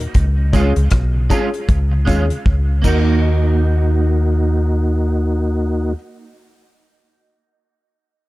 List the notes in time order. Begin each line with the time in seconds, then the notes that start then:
0.01 closed hi-hat
0.14 C#2, kick, closed hi-hat
0.38 C#3
0.53 G#3 C#4 F4 G#4, kick, closed hi-hat, tambourine
0.76 C#2 C#3, closed hi-hat
0.91 B1, kick, cross-stick, closed hi-hat
1.14 C#3
1.30 G#3 C#4 F4 G#4, kick, closed hi-hat, tambourine, high woodblock
1.54 F4 G#4, closed hi-hat
1.69 C#2, kick, closed hi-hat
1.90 C#3, muted clean electric guitar stroke
2.05 D#2 G#3 C#4 F4 G#4, kick, closed hi-hat
2.09 tambourine
2.29 C#3, closed hi-hat
2.46 C#2, kick
2.69 C#3
2.82 D#2 A#3 D#4 F#4 A#4, kick, crash, tambourine
2.86 F#4